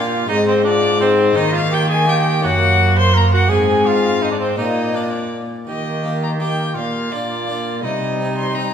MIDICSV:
0, 0, Header, 1, 6, 480
1, 0, Start_track
1, 0, Tempo, 358852
1, 392, Time_signature, 3, 2, 24, 8
1, 11688, End_track
2, 0, Start_track
2, 0, Title_t, "Violin"
2, 0, Program_c, 0, 40
2, 0, Note_on_c, 0, 77, 86
2, 397, Note_off_c, 0, 77, 0
2, 405, Note_on_c, 0, 75, 109
2, 633, Note_off_c, 0, 75, 0
2, 647, Note_on_c, 0, 72, 95
2, 873, Note_off_c, 0, 72, 0
2, 896, Note_on_c, 0, 74, 113
2, 1365, Note_on_c, 0, 72, 94
2, 1385, Note_off_c, 0, 74, 0
2, 1831, Note_on_c, 0, 75, 110
2, 1851, Note_off_c, 0, 72, 0
2, 2067, Note_off_c, 0, 75, 0
2, 2086, Note_on_c, 0, 77, 99
2, 2322, Note_on_c, 0, 79, 111
2, 2342, Note_off_c, 0, 77, 0
2, 2536, Note_off_c, 0, 79, 0
2, 2544, Note_on_c, 0, 80, 109
2, 2801, Note_on_c, 0, 79, 91
2, 2821, Note_off_c, 0, 80, 0
2, 3269, Note_off_c, 0, 79, 0
2, 3279, Note_on_c, 0, 78, 109
2, 3973, Note_off_c, 0, 78, 0
2, 3995, Note_on_c, 0, 84, 104
2, 4242, Note_on_c, 0, 82, 92
2, 4262, Note_off_c, 0, 84, 0
2, 4462, Note_off_c, 0, 82, 0
2, 4470, Note_on_c, 0, 78, 105
2, 4698, Note_off_c, 0, 78, 0
2, 4723, Note_on_c, 0, 80, 90
2, 5174, Note_on_c, 0, 77, 102
2, 5194, Note_off_c, 0, 80, 0
2, 5674, Note_on_c, 0, 75, 70
2, 5694, Note_off_c, 0, 77, 0
2, 5799, Note_on_c, 0, 74, 78
2, 5819, Note_off_c, 0, 75, 0
2, 5884, Note_off_c, 0, 74, 0
2, 5892, Note_on_c, 0, 72, 86
2, 6135, Note_off_c, 0, 72, 0
2, 6144, Note_on_c, 0, 75, 83
2, 6640, Note_on_c, 0, 74, 66
2, 6660, Note_off_c, 0, 75, 0
2, 6734, Note_on_c, 0, 75, 57
2, 6754, Note_off_c, 0, 74, 0
2, 6821, Note_on_c, 0, 74, 59
2, 6841, Note_off_c, 0, 75, 0
2, 7117, Note_off_c, 0, 74, 0
2, 7606, Note_on_c, 0, 75, 78
2, 8275, Note_off_c, 0, 75, 0
2, 8337, Note_on_c, 0, 82, 80
2, 8430, Note_off_c, 0, 82, 0
2, 8571, Note_on_c, 0, 79, 77
2, 9036, Note_off_c, 0, 79, 0
2, 9060, Note_on_c, 0, 77, 74
2, 9529, Note_on_c, 0, 74, 88
2, 9549, Note_off_c, 0, 77, 0
2, 10473, Note_off_c, 0, 74, 0
2, 10481, Note_on_c, 0, 75, 81
2, 11182, Note_off_c, 0, 75, 0
2, 11202, Note_on_c, 0, 84, 87
2, 11431, Note_on_c, 0, 82, 87
2, 11451, Note_off_c, 0, 84, 0
2, 11688, Note_off_c, 0, 82, 0
2, 11688, End_track
3, 0, Start_track
3, 0, Title_t, "Cor anglais"
3, 0, Program_c, 1, 69
3, 0, Note_on_c, 1, 65, 85
3, 382, Note_off_c, 1, 65, 0
3, 389, Note_on_c, 1, 63, 98
3, 497, Note_off_c, 1, 63, 0
3, 632, Note_on_c, 1, 60, 91
3, 853, Note_off_c, 1, 60, 0
3, 861, Note_on_c, 1, 62, 82
3, 1334, Note_off_c, 1, 62, 0
3, 1347, Note_on_c, 1, 60, 100
3, 1822, Note_on_c, 1, 63, 89
3, 1842, Note_off_c, 1, 60, 0
3, 2034, Note_off_c, 1, 63, 0
3, 2042, Note_on_c, 1, 65, 87
3, 2154, Note_off_c, 1, 65, 0
3, 2292, Note_on_c, 1, 67, 90
3, 2522, Note_off_c, 1, 67, 0
3, 2530, Note_on_c, 1, 68, 82
3, 2761, Note_off_c, 1, 68, 0
3, 2769, Note_on_c, 1, 67, 88
3, 3271, Note_on_c, 1, 66, 90
3, 3291, Note_off_c, 1, 67, 0
3, 3986, Note_on_c, 1, 72, 88
3, 4006, Note_off_c, 1, 66, 0
3, 4210, Note_on_c, 1, 70, 84
3, 4230, Note_off_c, 1, 72, 0
3, 4453, Note_off_c, 1, 70, 0
3, 4462, Note_on_c, 1, 66, 85
3, 4670, Note_on_c, 1, 68, 79
3, 4690, Note_off_c, 1, 66, 0
3, 5170, Note_on_c, 1, 65, 84
3, 5190, Note_off_c, 1, 68, 0
3, 5644, Note_on_c, 1, 63, 72
3, 5664, Note_off_c, 1, 65, 0
3, 5761, Note_off_c, 1, 63, 0
3, 5769, Note_on_c, 1, 62, 66
3, 5826, Note_off_c, 1, 62, 0
3, 5881, Note_on_c, 1, 60, 68
3, 6120, Note_off_c, 1, 60, 0
3, 6128, Note_on_c, 1, 63, 75
3, 6632, Note_on_c, 1, 62, 60
3, 6652, Note_off_c, 1, 63, 0
3, 7117, Note_off_c, 1, 62, 0
3, 7605, Note_on_c, 1, 67, 56
3, 8512, Note_off_c, 1, 67, 0
3, 8566, Note_on_c, 1, 67, 58
3, 9027, Note_on_c, 1, 65, 53
3, 9047, Note_off_c, 1, 67, 0
3, 9512, Note_off_c, 1, 65, 0
3, 9523, Note_on_c, 1, 65, 61
3, 10485, Note_on_c, 1, 63, 60
3, 10505, Note_off_c, 1, 65, 0
3, 11688, Note_off_c, 1, 63, 0
3, 11688, End_track
4, 0, Start_track
4, 0, Title_t, "Harpsichord"
4, 0, Program_c, 2, 6
4, 0, Note_on_c, 2, 46, 66
4, 0, Note_on_c, 2, 58, 65
4, 0, Note_on_c, 2, 62, 63
4, 341, Note_off_c, 2, 46, 0
4, 354, Note_on_c, 2, 56, 67
4, 366, Note_off_c, 2, 58, 0
4, 369, Note_on_c, 2, 60, 61
4, 373, Note_off_c, 2, 62, 0
4, 406, Note_on_c, 2, 44, 68
4, 1294, Note_off_c, 2, 56, 0
4, 1305, Note_off_c, 2, 60, 0
4, 1310, Note_on_c, 2, 56, 61
4, 1321, Note_on_c, 2, 60, 64
4, 1778, Note_off_c, 2, 44, 0
4, 1780, Note_on_c, 2, 58, 66
4, 1791, Note_off_c, 2, 56, 0
4, 1793, Note_on_c, 2, 63, 66
4, 1797, Note_off_c, 2, 60, 0
4, 1826, Note_on_c, 2, 51, 66
4, 2716, Note_off_c, 2, 58, 0
4, 2732, Note_on_c, 2, 58, 63
4, 2735, Note_off_c, 2, 63, 0
4, 2752, Note_on_c, 2, 63, 60
4, 3187, Note_off_c, 2, 58, 0
4, 3203, Note_on_c, 2, 58, 61
4, 3206, Note_off_c, 2, 51, 0
4, 3215, Note_on_c, 2, 61, 58
4, 3230, Note_off_c, 2, 63, 0
4, 3247, Note_on_c, 2, 42, 68
4, 4624, Note_off_c, 2, 58, 0
4, 4630, Note_off_c, 2, 61, 0
4, 4636, Note_off_c, 2, 42, 0
4, 4641, Note_on_c, 2, 56, 55
4, 4656, Note_on_c, 2, 60, 60
4, 4689, Note_on_c, 2, 44, 63
4, 6072, Note_off_c, 2, 56, 0
4, 6080, Note_off_c, 2, 60, 0
4, 6087, Note_off_c, 2, 44, 0
4, 6100, Note_on_c, 2, 58, 53
4, 6112, Note_on_c, 2, 65, 50
4, 6132, Note_on_c, 2, 46, 53
4, 6565, Note_off_c, 2, 58, 0
4, 6581, Note_on_c, 2, 58, 43
4, 6585, Note_off_c, 2, 65, 0
4, 6601, Note_on_c, 2, 65, 46
4, 7300, Note_off_c, 2, 46, 0
4, 7547, Note_off_c, 2, 58, 0
4, 7557, Note_off_c, 2, 65, 0
4, 7585, Note_on_c, 2, 51, 54
4, 8070, Note_on_c, 2, 58, 43
4, 8078, Note_on_c, 2, 63, 44
4, 8421, Note_off_c, 2, 58, 0
4, 8426, Note_off_c, 2, 63, 0
4, 8561, Note_on_c, 2, 58, 49
4, 8565, Note_on_c, 2, 63, 54
4, 8907, Note_off_c, 2, 58, 0
4, 8909, Note_off_c, 2, 63, 0
4, 8981, Note_off_c, 2, 51, 0
4, 9039, Note_on_c, 2, 46, 50
4, 9525, Note_on_c, 2, 58, 42
4, 9535, Note_on_c, 2, 62, 45
4, 9538, Note_on_c, 2, 65, 47
4, 9867, Note_off_c, 2, 58, 0
4, 9874, Note_off_c, 2, 62, 0
4, 9876, Note_off_c, 2, 65, 0
4, 9994, Note_on_c, 2, 58, 49
4, 9998, Note_on_c, 2, 62, 49
4, 10002, Note_on_c, 2, 65, 54
4, 10340, Note_off_c, 2, 58, 0
4, 10342, Note_off_c, 2, 62, 0
4, 10345, Note_off_c, 2, 65, 0
4, 10421, Note_off_c, 2, 46, 0
4, 10479, Note_on_c, 2, 48, 55
4, 10975, Note_on_c, 2, 60, 44
4, 10980, Note_on_c, 2, 63, 47
4, 11312, Note_off_c, 2, 60, 0
4, 11315, Note_off_c, 2, 63, 0
4, 11448, Note_on_c, 2, 60, 52
4, 11457, Note_on_c, 2, 63, 55
4, 11688, Note_off_c, 2, 48, 0
4, 11688, Note_off_c, 2, 60, 0
4, 11688, Note_off_c, 2, 63, 0
4, 11688, End_track
5, 0, Start_track
5, 0, Title_t, "Trombone"
5, 0, Program_c, 3, 57
5, 0, Note_on_c, 3, 58, 69
5, 396, Note_on_c, 3, 60, 72
5, 416, Note_off_c, 3, 58, 0
5, 873, Note_on_c, 3, 65, 67
5, 894, Note_off_c, 3, 60, 0
5, 1352, Note_on_c, 3, 63, 75
5, 1372, Note_off_c, 3, 65, 0
5, 1826, Note_off_c, 3, 63, 0
5, 1836, Note_on_c, 3, 58, 72
5, 2732, Note_off_c, 3, 58, 0
5, 2795, Note_on_c, 3, 58, 72
5, 3257, Note_off_c, 3, 58, 0
5, 3264, Note_on_c, 3, 58, 74
5, 4200, Note_off_c, 3, 58, 0
5, 4215, Note_on_c, 3, 58, 75
5, 4685, Note_off_c, 3, 58, 0
5, 4699, Note_on_c, 3, 60, 73
5, 5606, Note_off_c, 3, 60, 0
5, 5657, Note_on_c, 3, 60, 63
5, 6130, Note_on_c, 3, 58, 60
5, 6150, Note_off_c, 3, 60, 0
5, 6619, Note_off_c, 3, 58, 0
5, 6627, Note_on_c, 3, 58, 61
5, 7342, Note_off_c, 3, 58, 0
5, 7587, Note_on_c, 3, 58, 57
5, 8503, Note_off_c, 3, 58, 0
5, 8550, Note_on_c, 3, 58, 59
5, 9026, Note_off_c, 3, 58, 0
5, 9038, Note_on_c, 3, 58, 56
5, 9505, Note_off_c, 3, 58, 0
5, 9513, Note_on_c, 3, 58, 59
5, 10460, Note_on_c, 3, 55, 65
5, 10480, Note_off_c, 3, 58, 0
5, 11688, Note_off_c, 3, 55, 0
5, 11688, End_track
6, 0, Start_track
6, 0, Title_t, "Cello"
6, 0, Program_c, 4, 42
6, 0, Note_on_c, 4, 46, 77
6, 386, Note_off_c, 4, 46, 0
6, 394, Note_on_c, 4, 44, 78
6, 1797, Note_off_c, 4, 44, 0
6, 1824, Note_on_c, 4, 51, 79
6, 3261, Note_on_c, 4, 42, 80
6, 3281, Note_off_c, 4, 51, 0
6, 4685, Note_off_c, 4, 42, 0
6, 4693, Note_on_c, 4, 44, 76
6, 6090, Note_off_c, 4, 44, 0
6, 6144, Note_on_c, 4, 46, 64
6, 7335, Note_off_c, 4, 46, 0
6, 7594, Note_on_c, 4, 51, 62
6, 9040, Note_on_c, 4, 46, 58
6, 9060, Note_off_c, 4, 51, 0
6, 10472, Note_on_c, 4, 48, 68
6, 10492, Note_off_c, 4, 46, 0
6, 11688, Note_off_c, 4, 48, 0
6, 11688, End_track
0, 0, End_of_file